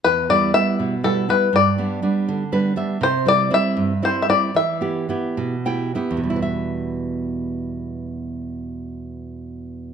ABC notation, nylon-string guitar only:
X:1
M:6/8
L:1/8
Q:3/8=76
K:Em
V:1 name="Nylon-string guitar"
E,, [G,B,E] [G,B,E] B,, [G,B,E] [G,B,E] | G,, [G,B,D] [G,B,D] D, [G,B,DB] [G,B,De] | C, [G,CE] [G,CE] G,, [G,CE] [G,CE] | E, [B,EG] [B,EG] B,, [B,EGg] [B,EG] |
[E,,B,,G,EBe]6- | [E,,B,,G,EBe]6 |]